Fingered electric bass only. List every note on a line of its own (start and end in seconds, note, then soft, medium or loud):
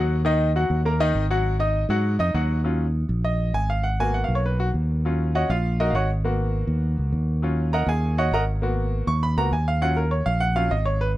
0.00 0.64 D#2 loud
0.70 1.11 D#2 medium
1.15 1.84 G#1 medium
1.89 2.17 G#2 loud
2.19 2.33 F2 medium
2.34 3.04 D#2 medium
3.09 3.51 A#1 medium
3.54 4.23 G#1 medium
4.28 4.70 B1 loud
4.74 5.43 D#2 medium
5.49 5.91 A#1 loud
5.93 6.62 G#1 medium
6.67 6.95 D#2 medium
6.98 7.12 C#2 medium
7.13 7.82 D#2 medium
7.87 8.29 D#2 loud
8.31 9.01 G#1 medium
9.07 9.35 D#2 loud
9.37 9.51 C#2 medium
9.51 10.21 D#2 medium
10.26 10.68 A#1 loud
10.70 11.17 G#1 loud